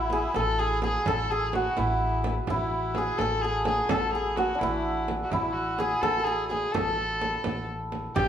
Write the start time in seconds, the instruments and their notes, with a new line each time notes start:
Already playing: upright bass A1, kamancheh E4, santur E4 F#4 G#4
0.10 santur G#4, frame drum
0.34 upright bass A1, kamancheh A4, santur A4, frame drum
0.59 kamancheh G#4, santur G#4
0.82 kamancheh G#4, santur G#4, frame drum
1.06 upright bass A1, santur A4, kamancheh A4, frame drum
1.31 kamancheh G#4, santur G#4
1.47 kamancheh G#4
1.53 kamancheh F#4, santur F#4, frame drum
1.77 upright bass A1, santur E4, kamancheh E4, frame drum
2.24 frame drum
2.47 upright bass A1, kamancheh E4, santur E4, frame drum
2.95 kamancheh G#4, santur G#4, frame drum
3.18 upright bass A1, kamancheh A4, santur A4, frame drum
3.42 kamancheh G#4, santur G#4
3.65 kamancheh G#4, santur G#4, frame drum
3.89 upright bass A1, kamancheh A4, santur A4, frame drum
4.12 kamancheh G#4, santur G#4
4.36 kamancheh F#4, santur F#4, frame drum
4.55 santur D4
4.59 upright bass A1, kamancheh E4, santur E4, frame drum
5.08 frame drum
5.24 kamancheh F#4
5.30 upright bass A1, kamancheh E4, santur E4, frame drum
5.53 kamancheh F#4
5.78 kamancheh G#4, santur G#4, frame drum
6.01 upright bass A1, kamancheh A4, santur A4, frame drum
6.20 santur A4
6.24 kamancheh G#4, santur G#4
6.48 kamancheh G#4, santur G#4, frame drum
6.71 upright bass A1, kamancheh A4, santur A4, frame drum
7.21 frame drum
7.44 upright bass A1, frame drum
7.92 frame drum
8.16 upright bass A1, kamancheh G4, santur G4, frame drum